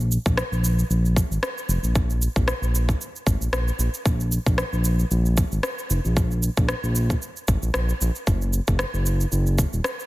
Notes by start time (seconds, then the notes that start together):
Already playing: A#1
0.00 shaker
0.12 shaker
0.26 A#1, kick, shaker
0.37 cross-stick, shaker
0.52 A#1, shaker
0.64 shaker
0.79 shaker
0.90 A#1, shaker
1.05 shaker
1.16 kick, shaker
1.31 G#1, shaker
1.43 cross-stick, shaker
1.58 shaker
1.69 F1, shaker
1.83 A#1, shaker
1.95 kick, shaker
2.10 shaker
2.22 shaker
2.36 A#1, kick, shaker
2.48 cross-stick, shaker
2.62 A#1, shaker
2.75 shaker
2.89 kick, shaker
3.01 shaker
3.16 shaker
3.27 G#1, kick, shaker
3.41 A#1, shaker
3.52 A#1, cross-stick, shaker
3.68 shaker
3.79 A#1, shaker
3.94 shaker
4.05 A#1, kick, shaker
4.20 shaker
4.32 shaker
4.46 A#1, kick, shaker
4.58 cross-stick, shaker
4.73 A#1, shaker
4.85 shaker
4.99 shaker
5.11 A#1, shaker
5.26 shaker
5.37 kick, shaker
5.52 G#1, shaker
5.63 cross-stick, shaker
5.79 shaker
5.90 F1, shaker
6.05 A#1, shaker
6.17 kick, shaker
6.31 shaker
6.43 shaker
6.57 A#1, kick, shaker
6.69 cross-stick, shaker
6.83 A#1, shaker
6.95 shaker
7.10 kick, shaker
7.22 shaker
7.37 shaker
7.48 G#1, kick, shaker
7.63 A#1, shaker
7.74 A#1, cross-stick, shaker
7.89 shaker
8.01 A#1, shaker
8.15 shaker
8.27 F#1, kick, shaker
8.42 shaker
8.53 shaker
8.68 F#1, kick, shaker
8.79 cross-stick, shaker
8.94 F#1, shaker
9.06 shaker
9.21 shaker
9.32 F#1, shaker
9.47 shaker
9.58 kick, shaker
9.73 D#1, shaker
9.84 cross-stick, shaker
10.00 shaker